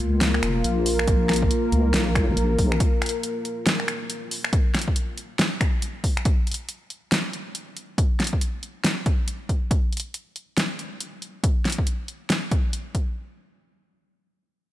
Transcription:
Already playing: analog synth pad A#3 F4 A#4
0.00 wobble bass C#2, closed hi-hat
0.21 snare, closed hi-hat
0.34 finger snap
0.43 wobble bass F1, finger snap, closed hi-hat
0.64 wobble bass A#1, closed hi-hat
0.86 open hi-hat
0.99 finger snap
1.08 kick, closed hi-hat
1.29 finger snap, snare, closed hi-hat
1.33 closed hi-hat
1.36 closed hi-hat
1.42 kick
1.51 closed hi-hat
1.72 wobble bass C#2, closed hi-hat
1.94 wobble bass B1, snare, closed hi-hat
2.15 finger snap, kick, closed hi-hat
2.29 wobble bass A#1
2.37 wobble bass A#1, closed hi-hat
2.59 wobble bass A#1, kick, open hi-hat
2.72 finger snap
2.80 kick, closed hi-hat
3.02 finger snap, closed hi-hat
3.06 closed hi-hat
3.09 closed hi-hat
3.23 closed hi-hat
3.45 closed hi-hat
3.67 snare, closed hi-hat
3.80 finger snap
3.88 finger snap, closed hi-hat
4.10 closed hi-hat
4.31 open hi-hat
4.44 finger snap
4.53 kick, closed hi-hat
4.75 finger snap, snare, closed hi-hat
4.79 closed hi-hat
4.82 closed hi-hat
4.88 kick
4.96 closed hi-hat
5.18 closed hi-hat
5.39 snare, closed hi-hat
5.61 finger snap, kick, closed hi-hat
5.82 closed hi-hat
6.04 kick, open hi-hat
6.17 finger snap, closed hi-hat
6.25 kick, closed hi-hat
6.47 closed hi-hat
6.51 closed hi-hat
6.54 closed hi-hat
6.69 closed hi-hat
6.90 closed hi-hat
7.12 snare, closed hi-hat
7.33 closed hi-hat
7.55 closed hi-hat
7.77 closed hi-hat
7.98 kick, closed hi-hat
8.20 snare, closed hi-hat
8.24 closed hi-hat
8.27 closed hi-hat
8.33 kick
8.41 closed hi-hat
8.63 closed hi-hat
8.84 snare, closed hi-hat
9.06 kick, closed hi-hat
9.28 closed hi-hat
9.49 kick, closed hi-hat
9.71 kick, closed hi-hat
9.93 closed hi-hat
9.97 closed hi-hat
10.00 closed hi-hat
10.14 closed hi-hat
10.36 closed hi-hat
10.57 snare, closed hi-hat
10.79 closed hi-hat
11.00 closed hi-hat
11.22 closed hi-hat
11.44 kick, closed hi-hat
11.65 snare, closed hi-hat
11.70 closed hi-hat
11.72 closed hi-hat
11.78 kick
11.87 closed hi-hat
12.08 closed hi-hat
12.30 snare, closed hi-hat
12.51 kick, closed hi-hat
12.73 closed hi-hat
12.95 kick, closed hi-hat

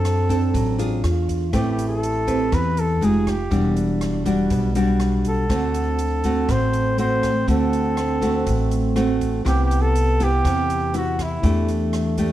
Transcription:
Already playing: upright bass F#2, nylon-string guitar F#3 C4 D4 A4, trombone C4, flugelhorn A4
0.05 cross-stick, closed hi-hat
0.29 nylon-string guitar C4 D4 A4, kick, closed hi-hat
0.54 upright bass A1, nylon-string guitar F#3, kick, closed hi-hat
0.78 nylon-string guitar D4 F4 G#4, closed hi-hat
1.04 upright bass E2, trombone F4, cross-stick, closed hi-hat
1.29 kick, closed hi-hat
1.53 upright bass A1, nylon-string guitar A3 C4 G4 B4, trombone E4, flugelhorn G4, kick, cross-stick, closed hi-hat
1.71 flugelhorn G4
1.79 closed hi-hat
1.88 flugelhorn A4
2.03 closed hi-hat
2.27 nylon-string guitar C4 G4 B4, kick, closed hi-hat
2.52 upright bass E2, nylon-string guitar E3, flugelhorn B4, kick, cross-stick, closed hi-hat
2.77 flugelhorn A4, closed hi-hat
3.01 upright bass F1, nylon-string guitar G#3 D#4 G4, trombone F4, flugelhorn G#4, closed hi-hat
3.27 flugelhorn G4, kick, cross-stick, closed hi-hat
3.50 upright bass E1, nylon-string guitar E3 G3 D4 F#4, trombone D4, kick, closed hi-hat
3.76 closed hi-hat
4.01 cross-stick, closed hi-hat
4.25 nylon-string guitar G3 D4 F#4, kick, closed hi-hat
4.50 upright bass B1, nylon-string guitar B2, kick, closed hi-hat
4.75 nylon-string guitar G3 D4 F#4, closed hi-hat
5.00 cross-stick, closed hi-hat
5.25 flugelhorn A4, kick, closed hi-hat
5.49 upright bass D2, nylon-string guitar D3 A3 C4 F#4, trombone C4, kick, cross-stick, closed hi-hat
5.74 closed hi-hat
5.99 closed hi-hat
6.24 nylon-string guitar A3 C4 F#4, kick, closed hi-hat
6.48 upright bass A1, nylon-string guitar A2, flugelhorn C5, kick, cross-stick, closed hi-hat
6.73 closed hi-hat
6.98 nylon-string guitar A3 C4 F#4, flugelhorn C5, closed hi-hat
7.23 kick, cross-stick, closed hi-hat
7.47 upright bass D2, nylon-string guitar D3 A3 C4 F#4, flugelhorn A4, kick, closed hi-hat
7.73 closed hi-hat
7.97 cross-stick, closed hi-hat
8.22 nylon-string guitar A3 C4 F#4, kick, closed hi-hat
8.47 upright bass A1, nylon-string guitar A2, kick, closed hi-hat
8.71 closed hi-hat
8.96 nylon-string guitar A3 C4 F#4, cross-stick, closed hi-hat
9.21 kick, closed hi-hat
9.44 upright bass C2, nylon-string guitar C3 B3 E4 G4, trombone B3, flugelhorn G4, kick, cross-stick, closed hi-hat
9.65 flugelhorn G4
9.71 closed hi-hat
9.81 flugelhorn A4
9.95 closed hi-hat
10.20 nylon-string guitar B3 E4 G4, flugelhorn G4, kick, closed hi-hat
10.45 upright bass E2, nylon-string guitar C3, kick, cross-stick, closed hi-hat
10.70 closed hi-hat
10.94 nylon-string guitar B3 E4 G4, flugelhorn F#4, closed hi-hat
11.19 flugelhorn E4, kick, cross-stick, closed hi-hat
11.43 upright bass E2, nylon-string guitar E3 A3 D4 G4, trombone A3, kick, closed hi-hat
11.68 closed hi-hat
11.93 cross-stick, closed hi-hat
12.18 nylon-string guitar A3 D4 G4, kick, closed hi-hat

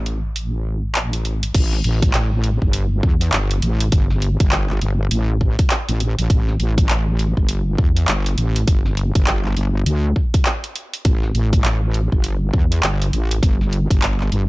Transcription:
Already playing: wobble bass A1
0.06 closed hi-hat
0.36 closed hi-hat
0.95 clap, closed hi-hat
1.13 closed hi-hat
1.25 closed hi-hat
1.43 closed hi-hat
1.54 wobble bass A1, kick, closed hi-hat, crash
1.73 snare
1.84 wobble bass A1, closed hi-hat
2.02 kick, closed hi-hat
2.14 wobble bass A1, clap, closed hi-hat
2.44 closed hi-hat
2.62 wobble bass G1, kick
2.73 closed hi-hat
3.03 wobble bass E2, kick
3.21 closed hi-hat
3.33 wobble bass G1, clap, closed hi-hat
3.51 closed hi-hat
3.62 wobble bass A1, closed hi-hat
3.80 closed hi-hat
3.92 wobble bass G1, kick, closed hi-hat
4.10 snare
4.22 closed hi-hat
4.40 wobble bass G1, kick, closed hi-hat
4.52 clap, closed hi-hat
4.70 clap
4.81 wobble bass G1, closed hi-hat
5.11 wobble bass A1, closed hi-hat
5.41 kick
5.59 kick, closed hi-hat
5.70 clap, closed hi-hat
5.89 wobble bass A1, closed hi-hat
6.00 closed hi-hat
6.19 wobble bass A1, closed hi-hat
6.30 wobble bass A1, kick, closed hi-hat
6.48 snare
6.60 wobble bass A1, closed hi-hat
6.78 kick, closed hi-hat
6.89 wobble bass A1, clap, closed hi-hat
7.19 closed hi-hat
7.37 wobble bass G1, kick
7.49 closed hi-hat
7.78 wobble bass E2, kick
7.97 closed hi-hat
8.08 wobble bass G1, clap, closed hi-hat
8.26 closed hi-hat
8.38 wobble bass A1, closed hi-hat
8.56 closed hi-hat
8.67 wobble bass G1, kick, closed hi-hat
8.86 snare
8.97 closed hi-hat
9.15 wobble bass G1, kick, closed hi-hat
9.27 clap, closed hi-hat
9.45 clap
9.56 wobble bass G1, closed hi-hat
9.86 wobble bass D2, closed hi-hat
10.16 kick
10.34 kick, closed hi-hat
10.46 clap, closed hi-hat
10.64 closed hi-hat
10.76 closed hi-hat
10.94 closed hi-hat
11.05 wobble bass A1, kick, closed hi-hat
11.23 snare
11.35 wobble bass A1, closed hi-hat
11.53 kick, closed hi-hat
11.64 wobble bass A1, clap, closed hi-hat
11.94 closed hi-hat
12.12 wobble bass G1, kick
12.24 closed hi-hat
12.53 wobble bass E2, kick
12.72 closed hi-hat
12.83 wobble bass G1, clap, closed hi-hat
13.02 closed hi-hat
13.13 wobble bass A1, closed hi-hat
13.31 closed hi-hat
13.43 wobble bass G1, kick, closed hi-hat
13.61 snare
13.73 closed hi-hat
13.90 wobble bass G1, kick, closed hi-hat
14.02 clap, closed hi-hat
14.21 clap
14.32 wobble bass G1, closed hi-hat

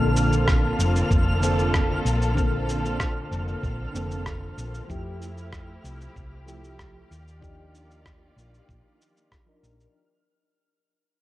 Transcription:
Already playing: fingered electric bass A#1, synth keys D3 A#3 C4 A4, string section D3 A#3 C4 F4 A4, synth texture F6
0.17 shaker
0.33 shaker
0.48 kick, cross-stick, shaker
0.79 fingered electric bass F1, shaker
0.96 shaker
1.10 fingered electric bass F1, kick, shaker
1.41 synth keys D3 A#3 C4, shaker
1.45 synth keys A4
1.59 shaker
1.74 kick, cross-stick, shaker
2.05 fingered electric bass A#1, shaker
2.22 shaker
2.35 synth keys D3 A#3 C4 A4, kick, shaker
2.69 shaker
2.85 shaker
3.00 kick, cross-stick, shaker
3.31 fingered electric bass F1, shaker
3.48 shaker
3.63 fingered electric bass A#1, kick, shaker
3.93 fingered electric bass F1, synth keys D3 A#3 C4 A4, shaker
4.11 shaker
4.26 kick, cross-stick, shaker
4.57 fingered electric bass A#1, shaker
4.74 shaker
4.87 fingered electric bass F2, synth keys F3 A3 E4, string section F3 A3 E4 G4, kick, shaker
4.91 synth keys G4
5.22 shaker
5.38 shaker
5.53 kick, cross-stick, shaker
5.84 fingered electric bass C2, shaker
6.01 shaker
6.16 fingered electric bass C2, kick, shaker
6.46 synth keys F3 A3 E4 G4, shaker
6.64 shaker
6.79 kick, cross-stick, shaker
7.10 fingered electric bass D#2, string section D#3 A#3 F4 D5, shaker
7.28 shaker
7.40 synth keys F3 D4 D#4, kick, shaker
7.44 synth keys G4
7.75 shaker
7.91 shaker
8.05 kick, cross-stick, shaker
8.36 fingered electric bass A#1, shaker
8.54 shaker
8.69 fingered electric bass A#1, kick, shaker
9.02 shaker
9.17 shaker
9.32 kick, cross-stick, shaker
9.46 synth keys F3 D4 D#4 A#4
9.63 fingered electric bass A#1, shaker
9.80 shaker

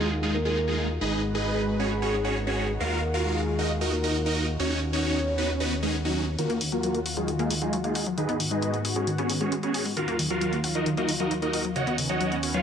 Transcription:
Already playing: analog synth bass D#2, analog synth pad D#3 D#4 F4 F#4, soft synth lead G#4
0.00 supersaw synth G#3 D#4 F4 G#4
0.23 supersaw synth G#3 D#4 F4 G#4
0.34 soft synth lead A#4
0.45 supersaw synth G#3 D#4 F4 G#4
0.68 supersaw synth G#3 D#4 F4 G#4
1.01 analog synth bass G#1, analog synth pad G#3 F#4 B4, supersaw synth D#4 G#4 B4 D#5, soft synth lead G#4
1.35 supersaw synth D#4 G#4 B4 D#5
1.80 supersaw synth C#4 F#4 G#4 C#5
2.02 supersaw synth C#4 F#4 G#4 C#5
2.24 supersaw synth C#4 F#4 G#4 C#5
2.47 supersaw synth C#4 F#4 G#4 C#5
2.80 analog synth bass D#2, analog synth pad D#3 F4, supersaw synth F4 F#4 A#4 F5, soft synth lead A#4
3.14 supersaw synth F4 F#4 A#4 F5
3.25 soft synth lead G#4
3.59 supersaw synth D#4 F#4 A#4 D#5
3.81 supersaw synth D#4 F#4 A#4 D#5
3.92 soft synth lead A#4
4.04 supersaw synth D#4 F#4 A#4 D#5
4.26 supersaw synth D#4 F#4 A#4 D#5
4.59 analog synth bass D#2, analog synth pad D#3 B3 C#4, supersaw synth C#4 D#4 F#4 C#5, soft synth lead C#5
4.93 supersaw synth C#4 D#4 F#4 C#5
5.38 supersaw synth B3 D#4 F#4 B4
5.60 supersaw synth B3 D#4 F#4 B4
5.83 supersaw synth G#3 C#4 D#4 G#4
6.05 supersaw synth F#3 C#4 D#4 F#4
6.39 analog synth pad D#2 D#3 F4 F#4, synth arpeggio sound D#3, supersaw synth A#3 F4 F#4 A#4, closed hi-hat
6.50 synth arpeggio sound A#3, closed hi-hat
6.61 synth arpeggio sound D#3, open hi-hat
6.72 synth arpeggio sound F#3, supersaw synth A#3 F4 F#4 A#4, closed hi-hat
6.83 synth arpeggio sound F#3, closed hi-hat
6.94 synth arpeggio sound A#3, closed hi-hat
7.06 synth arpeggio sound F#4, open hi-hat
7.17 synth arpeggio sound F#3, supersaw synth G#3 D#4 F4 G#4, closed hi-hat
7.28 synth arpeggio sound D#3, closed hi-hat
7.39 supersaw synth G#3 D#4 F4 G#4, synth arpeggio sound A#3, closed hi-hat
7.50 synth arpeggio sound D#3, open hi-hat
7.62 synth arpeggio sound F#3, supersaw synth G#3 D#4 F4 G#4, closed hi-hat
7.73 synth arpeggio sound F#3, closed hi-hat
7.84 supersaw synth G#3 D#4 F4 G#4, synth arpeggio sound A#3, closed hi-hat
7.95 synth arpeggio sound F#4, open hi-hat
8.06 synth arpeggio sound F#3, closed hi-hat
8.18 analog synth pad G#2 B3 F#4, synth arpeggio sound D#3, supersaw synth D#4 G#4 B4 D#5, closed hi-hat
8.29 synth arpeggio sound B3, closed hi-hat
8.40 synth arpeggio sound D#3, open hi-hat
8.51 synth arpeggio sound G#3, supersaw synth D#4 G#4 B4 D#5, closed hi-hat
8.62 synth arpeggio sound G#3, closed hi-hat
8.73 synth arpeggio sound B3, closed hi-hat
8.85 synth arpeggio sound G#4, open hi-hat
8.96 synth arpeggio sound G#3, supersaw synth C#4 F#4 G#4 C#5, closed hi-hat
9.07 synth arpeggio sound D#3, closed hi-hat
9.18 synth arpeggio sound B3, supersaw synth C#4 F#4 G#4 C#5, closed hi-hat
9.29 synth arpeggio sound D#3, open hi-hat
9.41 synth arpeggio sound G#3, supersaw synth C#4 F#4 G#4 C#5, closed hi-hat
9.52 synth arpeggio sound G#3, closed hi-hat
9.63 synth arpeggio sound B3, supersaw synth C#4 F#4 G#4 C#5, closed hi-hat
9.74 synth arpeggio sound G#4, open hi-hat
9.85 synth arpeggio sound G#3, open hi-hat
9.97 analog synth pad D#2 F#3 F4, synth arpeggio sound D#3, supersaw synth F4 F#4 A#4 F5, closed hi-hat
10.08 synth arpeggio sound A#3, closed hi-hat
10.19 synth arpeggio sound D#3, open hi-hat
10.30 synth arpeggio sound F#3, supersaw synth F4 F#4 A#4 F5, closed hi-hat
10.41 synth arpeggio sound F#3, closed hi-hat
10.53 synth arpeggio sound A#3, closed hi-hat
10.64 synth arpeggio sound F#4, open hi-hat
10.75 synth arpeggio sound F#3, supersaw synth D#4 F#4 A#4 D#5, closed hi-hat
10.86 synth arpeggio sound D#3, closed hi-hat
10.97 synth arpeggio sound A#3, supersaw synth D#4 F#4 A#4 D#5, closed hi-hat
11.09 synth arpeggio sound D#3, open hi-hat
11.20 synth arpeggio sound F#3, supersaw synth D#4 F#4 A#4 D#5
11.31 synth arpeggio sound F#3, closed hi-hat
11.42 synth arpeggio sound A#3, supersaw synth D#4 F#4 A#4 D#5, closed hi-hat
11.53 synth arpeggio sound F#4, open hi-hat
11.65 synth arpeggio sound F#3, closed hi-hat
11.76 synth arpeggio sound C#3, analog synth pad B3 C#4, supersaw synth F#4 C#5 D#5 F#5, closed hi-hat
11.87 synth arpeggio sound B3, closed hi-hat
11.98 synth arpeggio sound C#3, open hi-hat
12.09 synth arpeggio sound F#3, supersaw synth F#4 C#5 D#5 F#5, closed hi-hat
12.21 synth arpeggio sound F#3, closed hi-hat
12.32 synth arpeggio sound B3, closed hi-hat
12.43 synth arpeggio sound F#4, open hi-hat
12.54 synth arpeggio sound F#3, supersaw synth F4 B4 C#5 F5, closed hi-hat

